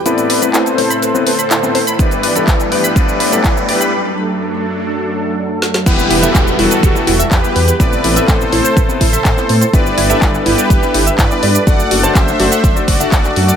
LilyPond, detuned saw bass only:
\new Staff \with { instrumentName = "Detuned saw bass" } { \clef bass \time 4/4 \key g \major \tempo 4 = 124 r1 | r1 | r1 | e,,8 e,,8 e,,8 e,,8 e,,8 e,,8 e,8 e,8 |
a,,8 a,,8 a,,8 a,,8 a,,8 a,,8 a,8 a,8 | g,,8 g,,8 g,,8 g,,8 g,,8 g,,8 g,8 g,8 | fis,,8 fis,,8 fis,,8 fis,,8 fis,,8 fis,,8 fis,,8 fis,8 | }